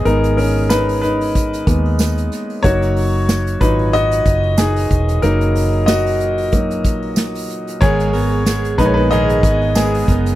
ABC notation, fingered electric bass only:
X:1
M:4/4
L:1/8
Q:"Swing 16ths" 1/4=93
K:G#m
V:1 name="Fingered electric bass" clef=bass
G,,,4- G,,, D,,2 z | F,,,3 G,,,2 F,,,2 E,,, | F,,,4- F,,, A,,,2 z | G,,,3 A,,,2 G,,,2 F,,, |]